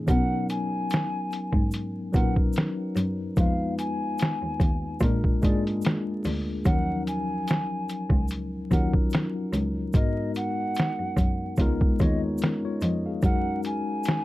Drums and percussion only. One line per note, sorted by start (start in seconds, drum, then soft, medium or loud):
0.08 kick loud
0.08 closed hi-hat medium
0.08 shaker medium
0.49 closed hi-hat medium
0.49 shaker soft
0.90 snare loud
0.90 closed hi-hat loud
0.90 shaker medium
1.32 closed hi-hat medium
1.32 shaker soft
1.53 kick medium
1.71 closed hi-hat medium
1.71 shaker medium
2.14 kick loud
2.14 closed hi-hat medium
2.14 shaker soft
2.36 kick medium
2.53 closed hi-hat medium
2.53 shaker medium
2.58 snare loud
2.96 closed hi-hat medium
2.96 shaker medium
3.36 kick loud
3.36 closed hi-hat medium
3.36 shaker medium
3.79 closed hi-hat medium
3.79 shaker soft
4.18 closed hi-hat medium
4.18 shaker medium
4.22 snare loud
4.60 kick medium
4.60 closed hi-hat medium
4.60 shaker soft
5.00 kick medium
5.00 closed hi-hat medium
5.00 shaker medium
5.24 kick medium
5.42 kick medium
5.42 closed hi-hat medium
5.42 shaker medium
5.67 closed hi-hat soft
5.82 closed hi-hat medium
5.82 shaker medium
5.86 snare loud
6.24 open hi-hat medium
6.24 shaker medium
6.65 kick loud
6.65 closed hi-hat medium
6.65 shaker medium
7.07 closed hi-hat medium
7.07 shaker soft
7.48 snare loud
7.48 closed hi-hat medium
7.48 shaker medium
7.89 closed hi-hat medium
7.89 shaker soft
8.10 kick medium
8.28 closed hi-hat medium
8.28 shaker medium
8.71 kick medium
8.71 closed hi-hat medium
8.71 shaker medium
8.94 kick medium
9.10 closed hi-hat medium
9.10 shaker medium
9.15 snare loud
9.53 closed hi-hat medium
9.53 shaker medium
9.93 kick loud
9.93 closed hi-hat medium
9.93 shaker medium
10.35 closed hi-hat medium
10.35 shaker soft
10.75 closed hi-hat medium
10.75 shaker medium
10.80 snare loud
11.17 kick medium
11.17 closed hi-hat medium
11.17 shaker soft
11.56 kick medium
11.56 closed hi-hat medium
11.56 shaker medium
11.81 kick medium
11.99 kick loud
11.99 closed hi-hat medium
11.99 shaker soft
12.38 closed hi-hat medium
12.38 shaker medium
12.44 snare loud
12.81 closed hi-hat medium
12.81 shaker medium
13.22 kick loud
13.22 closed hi-hat medium
13.22 shaker medium
13.63 closed hi-hat medium
13.63 shaker soft
14.04 closed hi-hat loud
14.04 shaker medium
14.08 snare loud